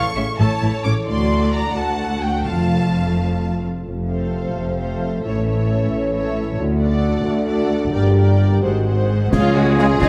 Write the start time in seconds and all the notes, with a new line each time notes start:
Already playing: A2 A3 E4 A5 C#6
0.04 A4
0.15 A1 A2 C#3 C#4 E4 E5
0.28 E5
0.39 A1 A2 A3 A4 C#5 A5
0.51 E5
0.62 A1 A2 E3 E4 A4
0.73 E4
0.84 A1 A2 C#3 A3 C#4 D6
0.95 E3
1.06 D2 D3 A3 F#4 D5 C6
1.17 A3
1.29 F#4
1.41 A4
1.52 F#4 A#5
1.65 F#5
1.75 D2 A3 F#4 F#5 A5
1.99 A4
2.11 F#4
2.22 A3 G5
2.34 D4
2.45 F1 F2 F3 A3 F4 F5 A5
2.59 F4
2.71 A4
2.82 F4
2.93 F5
3.05 A5
3.18 F5
3.29 A5
3.40 F5
3.53 A4
3.65 F4
3.77 A3
3.85 F1 F2 C3 F3 A3 C4 F4
4.09 F4 A4 C5 F5
4.34 C5
4.56 F1 F2 F5
4.77 A4 C5 F5
5.01 A4
5.23 A1 A2 E3 C#4 E4 A4 C#5 E5
5.45 C#4 A4 E5
5.49 C#5
5.69 A4
5.91 A1 A2 C#5
6.13 A4 C#5 E5
6.37 E4
6.58 D2 D3 A3 D4 F#4
6.80 D4 A4 D5 F#5
7.04 A4
7.25 D2 D5
7.47 A4 D5 F#5
7.70 F#4
7.93 G1 G2 A#3 G4 A#4 D5 G5
8.16 D4 A#4 D5 G5
8.39 G4 A#4
8.61 G#1 G#2 D#3 G#3 C4 F#4 G#4 C5 F#5
8.85 C4 G#4 C5 F#5
9.10 F#4 G#4
9.32 C#2 C#3 G#3 C#4 F4 G#4, concert bass drum, snare, crash
9.44 G#3
9.55 C#4 F4 F#4 C#5
9.67 F4
9.78 C#3 G#3 C#4 F4 G#4, snare
9.91 C#5
10.01 C#2 D#4 F4 C#5 D#5 F5, concert bass drum, snare